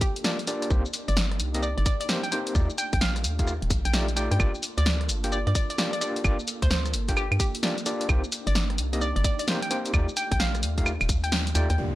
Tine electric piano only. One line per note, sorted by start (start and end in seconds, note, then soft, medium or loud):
0.24 0.37 A#3 medium
0.24 0.37 D4 medium
0.24 0.37 F4 medium
0.24 0.37 G4 medium
0.24 0.37 D5 medium
0.48 0.69 A#3 medium
0.48 0.69 D4 medium
0.48 0.69 F4 medium
0.48 0.69 G4 medium
0.48 0.69 D5 medium
0.71 0.83 A#3 medium
0.71 0.83 C4 medium
0.71 0.83 D#4 medium
0.71 0.83 G4 medium
0.71 0.83 C5 medium
1.55 1.67 A#3 medium
1.55 1.67 C4 medium
1.55 1.67 D#4 medium
1.55 1.67 G4 medium
1.55 1.67 D#5 medium
2.09 2.21 A#3 medium
2.09 2.21 C4 medium
2.09 2.21 D#4 medium
2.09 2.21 G4 medium
2.09 2.21 C5 medium
2.32 2.53 A#3 medium
2.32 2.53 C4 medium
2.32 2.53 D#4 medium
2.32 2.53 G4 medium
2.32 2.53 C5 medium
2.55 2.67 A3 medium
2.55 2.67 D#4 medium
2.55 2.67 F4 medium
2.55 2.67 G4 medium
2.55 2.67 D5 medium
3.39 3.52 A3 medium
3.39 3.52 D#4 medium
3.39 3.52 F4 medium
3.39 3.52 G4 medium
3.39 3.52 F5 medium
3.94 4.06 A3 medium
3.94 4.06 D#4 medium
3.94 4.06 F4 medium
3.94 4.06 G4 medium
3.94 4.06 D5 medium
4.17 4.38 A3 medium
4.17 4.38 D#4 medium
4.17 4.38 F4 medium
4.17 4.38 G4 medium
4.17 4.38 D5 medium
4.40 4.52 A#3 medium
4.40 4.52 D4 medium
4.40 4.52 F4 medium
4.40 4.52 G4 medium
4.40 4.52 D5 medium
5.24 5.37 A#3 medium
5.24 5.37 D4 medium
5.24 5.37 F4 medium
5.24 5.37 G4 medium
5.24 5.37 G5 medium
5.78 5.90 A#3 medium
5.78 5.90 D4 medium
5.78 5.90 F4 medium
5.78 5.90 G4 medium
5.78 5.90 D5 medium
6.01 6.22 A#3 medium
6.01 6.22 D4 medium
6.01 6.22 F4 medium
6.01 6.22 G4 medium
6.01 6.22 D5 medium
6.24 6.37 A#3 medium
6.24 6.37 D4 medium
6.24 6.37 F4 medium
6.24 6.37 G4 medium
6.24 6.37 D5 medium
7.09 7.21 A#3 medium
7.09 7.21 D4 medium
7.09 7.21 F4 medium
7.09 7.21 G4 medium
7.09 7.21 G5 medium
7.63 7.75 A#3 medium
7.63 7.75 D4 medium
7.63 7.75 F4 medium
7.63 7.75 G4 medium
7.63 7.75 D5 medium
7.86 8.07 A#3 medium
7.86 8.07 D4 medium
7.86 8.07 F4 medium
7.86 8.07 G4 medium
7.86 8.07 D5 medium
8.09 8.21 A#3 medium
8.09 8.21 C4 medium
8.09 8.21 D#4 medium
8.09 8.21 G4 medium
8.09 8.21 C5 medium
8.93 9.06 A#3 medium
8.93 9.06 C4 medium
8.93 9.06 D#4 medium
8.93 9.06 G4 medium
8.93 9.06 D#5 medium
9.48 9.60 A#3 medium
9.48 9.60 C4 medium
9.48 9.60 D#4 medium
9.48 9.60 G4 medium
9.48 9.60 C5 medium
9.71 9.92 A#3 medium
9.71 9.92 C4 medium
9.71 9.92 D#4 medium
9.71 9.92 G4 medium
9.71 9.92 C5 medium
9.94 10.06 A3 medium
9.94 10.06 D#4 medium
9.94 10.06 F4 medium
9.94 10.06 G4 medium
9.94 10.06 D5 medium
10.78 10.91 A3 medium
10.78 10.91 D#4 medium
10.78 10.91 F4 medium
10.78 10.91 G4 medium
10.78 10.91 F5 medium
11.55 11.67 A3 medium
11.55 11.67 D#4 medium
11.55 11.67 F4 medium
11.55 11.67 G4 medium
11.55 11.67 D5 loud
11.78 11.90 A#3 medium
11.78 11.90 D4 medium
11.78 11.90 F4 medium
11.78 11.90 G4 medium
11.78 11.90 D5 medium